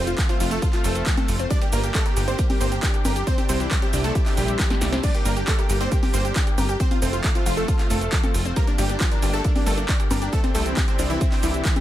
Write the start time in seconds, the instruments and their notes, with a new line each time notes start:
Already playing: analog synth bass F1, analog synth pad A3 C4 F4
0.07 synth pluck F3, grand piano F4, supersaw synth F4, closed hi-hat, shaker
0.18 synth pluck A3, kick, clap, closed hi-hat, shaker
0.29 synth pluck C4, supersaw synth F4, grand piano F4, closed hi-hat, shaker
0.40 analog synth bass F1, supersaw synth F4, synth pluck F4, grand piano F4, open hi-hat, shaker
0.51 supersaw synth A3 A4, grand piano A4, closed hi-hat, shaker
0.62 supersaw synth F4, grand piano F4, synth pluck A4, kick, closed hi-hat, shaker
0.73 supersaw synth F4, synth pluck F4, grand piano F4, clap, closed hi-hat, shaker
0.84 analog synth bass F1, supersaw synth A3 A4, synth pluck C4, grand piano A4, open hi-hat, shaker
0.95 synth pluck A3, closed hi-hat, shaker
1.06 synth pluck F3, kick, clap, closed hi-hat, shaker
1.17 synth pluck A3, closed hi-hat, high conga, shaker
1.28 analog synth bass F1, open hi-hat, shaker
1.39 synth pluck C4, closed hi-hat, shaker
1.50 synth pluck G3, analog synth pad A#3 D4 G4, supersaw synth D4 D5, grand piano D5, kick, closed hi-hat, shaker
1.61 synth pluck A#3, supersaw synth G4, grand piano G4, closed hi-hat, shaker
1.73 analog synth bass G1, supersaw synth A#3 A#4, synth pluck D4, grand piano A#4, open hi-hat, shaker
1.84 synth pluck G4, supersaw synth G4, grand piano G4, closed hi-hat, shaker
1.95 supersaw synth A3 A4, grand piano A4, kick, clap, closed hi-hat, shaker
2.06 grand piano G4, supersaw synth G4, synth pluck A#4, closed hi-hat, shaker
2.17 analog synth bass G1, grand piano G4, synth pluck G4, supersaw synth G4, open hi-hat, shaker
2.28 supersaw synth C4 C5, synth pluck D4, grand piano C5, closed hi-hat, shaker
2.39 synth pluck A#3, supersaw synth G4, kick, closed hi-hat, shaker
2.50 synth pluck G3, supersaw synth G4, grand piano G4, open hi-hat, high conga, shaker
2.60 analog synth bass G1, synth pluck A#3, supersaw synth C4 C5, grand piano C5, open hi-hat, shaker
2.72 supersaw synth G4, grand piano G4, closed hi-hat, shaker
2.83 synth pluck D4, supersaw synth G4, kick, clap, closed hi-hat, shaker
2.94 synth pluck G4, closed hi-hat, shaker
3.05 analog synth bass G1, supersaw synth G4, grand piano G4, synth pluck A#4, open hi-hat, high conga, shaker
3.16 supersaw synth G4, grand piano G4, synth pluck G4, closed hi-hat, shaker
3.27 analog synth pad C3 C4 E4 G4, supersaw synth C4 C5, synth pluck C4, grand piano C5, kick, closed hi-hat, shaker
3.38 grand piano G4, supersaw synth G4, closed hi-hat, high conga, shaker
3.49 analog synth bass C2, synth pluck G3, supersaw synth C4 C5, grand piano C5, open hi-hat, shaker
3.60 synth pluck E3, grand piano G4, supersaw synth G4, closed hi-hat, shaker
3.71 kick, clap, closed hi-hat, shaker
3.82 synth pluck C4, supersaw synth G4, grand piano G4, closed hi-hat, shaker
3.93 analog synth bass C2, synth pluck D4, supersaw synth G4, grand piano G4, open hi-hat, shaker
4.04 supersaw synth A3 A4, grand piano A4, closed hi-hat, shaker
4.15 synth pluck E4, supersaw synth G4, grand piano G4, kick, closed hi-hat, shaker
4.26 synth pluck D4, supersaw synth G4, grand piano G4, clap, open hi-hat, shaker
4.37 analog synth bass A#1, supersaw synth G3 G4, synth pluck C4, grand piano G4, open hi-hat, shaker
4.48 synth pluck G3, closed hi-hat, shaker
4.59 synth pluck E3, kick, snare, clap, closed hi-hat, shaker
4.70 synth pluck G3, snare, closed hi-hat, high conga, shaker
4.81 analog synth bass C2, snare, open hi-hat, shaker
4.92 synth pluck C4, snare, closed hi-hat, high conga, shaker
5.03 synth pluck G3, analog synth pad A#3, supersaw synth D4 D5, grand piano D5, kick, closed hi-hat, crash, shaker
5.15 synth pluck A#3, grand piano G4, supersaw synth G4, closed hi-hat, shaker
5.25 analog synth bass G1, supersaw synth A#3 A#4, synth pluck D4, grand piano A#4, open hi-hat, shaker
5.37 supersaw synth G4, synth pluck G4, grand piano G4, closed hi-hat, shaker
5.47 supersaw synth A3 A4, grand piano A4, kick, clap, closed hi-hat, shaker
5.58 supersaw synth G4, grand piano G4, synth pluck A#4, closed hi-hat, shaker
5.70 analog synth bass G1, supersaw synth G4, synth pluck G4, grand piano G4, open hi-hat, shaker
5.81 supersaw synth C4 C5, synth pluck D4, grand piano C5, closed hi-hat, shaker
5.92 synth pluck A#3, supersaw synth G4, grand piano G4, kick, closed hi-hat, shaker
6.03 synth pluck G3, supersaw synth G4, grand piano G4, open hi-hat, high conga, shaker
6.14 analog synth bass G1, synth pluck A#3, supersaw synth C4 C5, grand piano C5, open hi-hat, shaker
6.25 supersaw synth G4, grand piano G4, closed hi-hat, shaker
6.36 synth pluck D4, supersaw synth G4, kick, clap, closed hi-hat, shaker
6.47 synth pluck G4, closed hi-hat, shaker
6.58 analog synth bass G1, supersaw synth G4, grand piano G4, synth pluck A#4, open hi-hat, high conga, shaker
6.69 grand piano G4, synth pluck G4, supersaw synth G4, closed hi-hat, shaker
6.80 analog synth pad A3 C4 F4, synth pluck C4, supersaw synth C4 C5, grand piano C5, kick, closed hi-hat, shaker
6.91 grand piano F4, supersaw synth F4, closed hi-hat, high conga, shaker
7.02 analog synth bass F1, synth pluck A3, supersaw synth C4 C5, grand piano C5, open hi-hat, shaker
7.13 synth pluck F3, grand piano F4, supersaw synth F4, closed hi-hat, shaker
7.24 synth pluck A3, kick, clap, closed hi-hat, shaker
7.35 synth pluck C4, grand piano F4, supersaw synth F4, closed hi-hat, shaker
7.46 analog synth bass F1, grand piano F4, synth pluck F4, supersaw synth F4, open hi-hat, shaker
7.57 supersaw synth A3 A4, grand piano A4, closed hi-hat, shaker
7.68 supersaw synth F4, grand piano F4, synth pluck A4, kick, closed hi-hat, shaker
7.79 supersaw synth F4, grand piano F4, synth pluck F4, clap, closed hi-hat, shaker
7.90 analog synth bass F1, supersaw synth A3 A4, synth pluck C4, grand piano A4, open hi-hat, shaker
8.01 synth pluck A3, closed hi-hat, shaker
8.12 synth pluck F3, kick, clap, closed hi-hat, shaker
8.23 synth pluck A3, closed hi-hat, high conga, shaker
8.34 analog synth bass F1, open hi-hat, shaker
8.45 synth pluck C4, closed hi-hat, shaker
8.56 synth pluck G3, analog synth pad A#3 D4 G4, supersaw synth A#3 A#4, grand piano A#4, kick, closed hi-hat, shaker
8.67 synth pluck A#3, supersaw synth D4, grand piano D4, closed hi-hat, shaker
8.78 analog synth bass G1, supersaw synth G3 G4, synth pluck D4, grand piano G4, open hi-hat, shaker
8.89 grand piano D4, supersaw synth D4, synth pluck G4, closed hi-hat, shaker
9.00 supersaw synth F3 F4, grand piano F4, kick, clap, closed hi-hat, shaker
9.11 grand piano D4, supersaw synth D4, synth pluck A#4, closed hi-hat, shaker
9.22 analog synth bass G1, supersaw synth D4, grand piano D4, synth pluck G4, open hi-hat, shaker
9.33 supersaw synth A3 A4, synth pluck D4, grand piano A4, closed hi-hat, shaker
9.44 synth pluck A#3, supersaw synth D4, kick, closed hi-hat, shaker
9.56 synth pluck G3, supersaw synth D4, grand piano D4, open hi-hat, high conga, shaker
9.66 analog synth bass G1, supersaw synth A3 A4, synth pluck A#3, grand piano A4, open hi-hat, shaker
9.78 supersaw synth D4, grand piano D4, closed hi-hat, shaker
9.89 supersaw synth D4, synth pluck D4, grand piano D4, kick, clap, closed hi-hat, shaker
10.00 synth pluck G4, closed hi-hat, shaker
10.11 analog synth bass G1, supersaw synth D4, grand piano D4, synth pluck A#4, open hi-hat, high conga, shaker
10.22 supersaw synth D4, grand piano D4, synth pluck G4, closed hi-hat, shaker
10.33 analog synth pad C3 C4 D4 E4, supersaw synth A3 A4, synth pluck C4, grand piano A4, kick, closed hi-hat, shaker
10.44 supersaw synth C4, grand piano C4, closed hi-hat, high conga, shaker
10.55 analog synth bass C2, synth pluck G3, supersaw synth A3 A4, grand piano A4, open hi-hat, shaker
10.66 synth pluck E3, supersaw synth C4, grand piano C4, closed hi-hat, shaker
10.77 synth pluck G3, kick, clap, closed hi-hat, shaker
10.88 synth pluck C4, supersaw synth C4, grand piano C4, closed hi-hat, shaker
10.99 analog synth bass C2, supersaw synth C4, grand piano C4, synth pluck D4, open hi-hat, shaker
11.10 supersaw synth E3 E4, grand piano E4, closed hi-hat, shaker
11.21 grand piano C4, supersaw synth C4, synth pluck E4, kick, closed hi-hat, shaker
11.32 grand piano C4, supersaw synth C4, synth pluck D4, clap, open hi-hat, shaker
11.43 analog synth bass C2, supersaw synth E3 E4, synth pluck E3, grand piano E4, open hi-hat, shaker
11.54 synth pluck G3, closed hi-hat, shaker
11.65 synth pluck E3, kick, clap, closed hi-hat, shaker
11.76 synth pluck G3, closed hi-hat, high conga, shaker